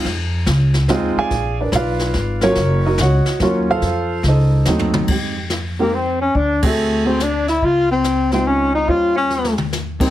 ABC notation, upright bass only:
X:1
M:3/4
L:1/8
Q:"Swing" 1/4=143
K:Fphr
V:1 name="Upright bass" clef=bass
F,,2 D,,2 E,, z | B,,,2 _C,,2 A,,,2 | G,,,2 D,, z E,,2 | F,,2 D,,2 E,,2 |
[K:Fm] F,,6 | =D,,6 | D,,6 | E,,6 |]